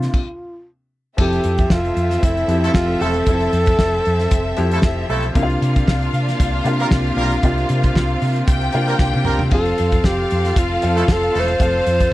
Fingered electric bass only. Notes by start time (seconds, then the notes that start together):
1.19 F1
1.45 F2
1.70 F1
1.96 F2
2.23 F1
2.48 F2
2.75 F1
3.01 E1
3.27 F1
3.53 F2
3.79 F1
4.07 F2
4.32 F1
4.58 F2
4.83 F1
5.09 B1
5.35 C2
5.62 C3
5.87 C2
6.13 C3
6.40 C2
6.65 C3
6.92 C2
7.16 B1
7.43 C2
7.70 C3
7.95 C2
8.22 C3
8.48 C2
8.74 C3
8.99 C2
9.16 C3
9.27 C2
9.42 C3
9.52 F1
9.80 F2
10.04 F1
10.32 F2
10.56 F1
10.83 F2
11.08 F1
11.35 E1
11.60 F1
11.87 F2